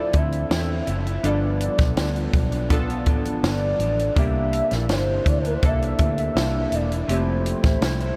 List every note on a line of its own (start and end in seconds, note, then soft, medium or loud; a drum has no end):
0.00 0.13 F3 soft
0.00 0.14 C4 soft
0.00 1.26 C4 medium
0.00 1.24 D4 medium
0.00 0.13 E4 soft
0.00 0.77 E4 medium
0.00 1.25 F4 medium
0.00 1.25 A4 medium
0.00 0.19 D5 medium
0.12 0.43 D2 medium
0.12 0.48 D3 soft
0.12 0.51 F3 medium
0.12 0.50 C4 medium
0.12 0.51 E4 medium
0.12 kick medium
0.12 closed hi-hat medium
0.17 0.89 E5 loud
0.32 closed hi-hat soft
0.49 0.80 E2 medium
0.49 0.84 D3 medium
0.49 0.87 C4 medium
0.49 0.88 E4 medium
0.49 snare loud
0.49 closed hi-hat medium
0.86 1.17 F#1 medium
0.86 1.05 D3 soft
0.86 1.06 F3 medium
0.86 1.06 C4 medium
0.86 1.03 E4 medium
0.86 1.27 E5 medium
0.86 closed hi-hat medium
1.05 1.24 F3 soft
1.05 1.24 C4 medium
1.05 1.23 E4 soft
1.05 closed hi-hat soft
1.23 1.68 G1 medium
1.23 1.79 G2 medium
1.23 1.79 D3 medium
1.23 1.79 F3 medium
1.23 2.23 B3 medium
1.23 1.79 B3 medium
1.23 2.23 D4 medium
1.23 1.77 D4 medium
1.23 2.24 F4 medium
1.23 2.24 A4 medium
1.23 2.71 D5 medium
1.23 closed hi-hat medium
1.60 closed hi-hat medium
1.78 1.94 B1 medium
1.78 1.96 F3 soft
1.78 1.97 B3 soft
1.78 1.97 D4 soft
1.78 kick medium
1.78 snare soft
1.78 closed hi-hat soft
1.96 2.27 D2 medium
1.96 2.51 G2 medium
1.96 2.52 D3 medium
1.96 2.52 F3 medium
1.96 2.52 B3 medium
1.96 2.50 D4 medium
1.96 snare loud
1.96 closed hi-hat medium
2.16 closed hi-hat soft
2.33 3.07 B1 medium
2.33 kick medium
2.33 closed hi-hat medium
2.52 2.90 F3 soft
2.52 2.89 B3 medium
2.52 2.87 D4 medium
2.52 closed hi-hat soft
2.70 3.69 B3 medium
2.70 3.70 D4 medium
2.70 3.70 F4 medium
2.70 3.71 A4 medium
2.70 kick medium
2.70 closed hi-hat medium
2.88 3.07 F3 soft
2.88 3.07 B3 soft
2.88 3.07 D4 soft
2.88 closed hi-hat soft
3.06 3.45 A1 medium
3.06 3.42 D3 medium
3.06 3.43 F3 medium
3.06 3.43 B3 medium
3.06 3.44 D4 medium
3.06 kick medium
3.06 closed hi-hat medium
3.25 closed hi-hat soft
3.42 3.73 G1 medium
3.42 3.79 G2 medium
3.42 3.78 D3 medium
3.42 3.79 F3 medium
3.42 3.80 B3 medium
3.42 3.81 D4 medium
3.42 4.13 D5 loud
3.42 snare loud
3.42 closed hi-hat medium
3.79 4.09 A1 medium
3.79 3.98 D3 medium
3.79 3.98 F3 medium
3.79 3.99 B3 medium
3.79 3.96 D4 medium
3.79 closed hi-hat medium
3.98 4.17 F3 soft
3.98 4.17 B3 soft
3.98 4.16 D4 medium
3.98 closed hi-hat soft
4.16 4.60 C2 medium
4.16 4.71 C3 medium
4.16 4.72 E3 medium
4.16 5.15 A#3 medium
4.16 4.71 A#3 medium
4.16 5.16 D4 medium
4.16 4.69 D4 medium
4.16 5.16 E4 medium
4.16 5.17 G4 medium
4.16 4.93 E5 loud
4.16 kick loud
4.16 closed hi-hat medium
4.53 closed hi-hat medium
4.70 4.86 A#1 medium
4.70 4.88 E3 soft
4.70 4.89 A#3 soft
4.70 4.89 D4 medium
4.70 snare soft
4.70 closed hi-hat soft
4.88 5.18 G1 medium
4.88 5.44 C3 medium
4.88 5.44 E3 medium
4.88 5.44 A#3 medium
4.88 5.42 D4 medium
4.88 5.29 C5 loud
4.88 snare loud
4.88 closed hi-hat medium
5.26 5.55 D2 medium
5.26 5.39 D5 medium
5.26 kick medium
5.26 closed hi-hat medium
5.38 5.47 C5 medium
5.43 5.82 E3 soft
5.43 5.80 A#3 soft
5.43 5.78 D4 medium
5.43 5.55 A#4 medium
5.43 closed hi-hat soft
5.54 5.66 C5 medium
5.62 5.92 C2 medium
5.62 6.62 A#3 medium
5.62 6.62 D4 medium
5.62 6.62 E4 medium
5.62 6.63 A4 medium
5.62 6.18 E5 loud
5.62 kick medium
5.62 closed hi-hat medium
5.79 5.99 A#3 soft
5.79 5.98 D4 soft
5.79 closed hi-hat soft
5.83 5.99 E3 soft
5.98 6.28 D2 medium
5.98 6.35 C3 soft
5.98 6.36 E3 soft
5.98 6.36 A#3 medium
5.98 kick medium
5.98 closed hi-hat medium
6.02 6.37 D4 medium
6.18 6.76 E5 loud
6.18 closed hi-hat soft
6.35 6.65 C2 medium
6.35 6.70 C3 medium
6.35 6.72 E3 medium
6.35 6.73 A#3 medium
6.35 6.73 D4 medium
6.35 snare loud
6.35 closed hi-hat medium
6.71 7.01 E1 medium
6.71 6.90 C3 medium
6.71 6.91 E3 medium
6.71 6.90 A#3 medium
6.71 6.88 D4 medium
6.71 7.12 D5 medium
6.71 closed hi-hat medium
6.90 7.08 E3 soft
6.90 7.09 A#3 soft
6.90 7.08 D4 soft
6.90 closed hi-hat soft
7.07 7.52 F1 medium
7.07 7.63 F3 medium
7.07 8.07 A3 medium
7.07 7.63 A3 medium
7.07 8.08 C4 medium
7.07 7.63 C4 medium
7.07 8.08 E4 medium
7.07 7.61 E4 medium
7.07 8.09 G4 medium
7.07 8.16 C5 loud
7.07 closed hi-hat medium
7.46 closed hi-hat medium
7.62 7.78 A1 medium
7.62 7.81 A3 soft
7.62 7.81 C4 soft
7.62 7.81 E4 soft
7.62 kick medium
7.62 snare soft
7.62 closed hi-hat soft
7.82 8.11 C2 medium
7.82 8.00 F3 medium
7.82 8.00 A3 medium
7.82 8.00 C4 medium
7.82 7.98 E4 medium
7.82 snare loud
7.82 closed hi-hat medium
7.99 8.16 A3 soft
7.99 8.16 C4 soft
7.99 8.16 E4 soft
7.99 closed hi-hat soft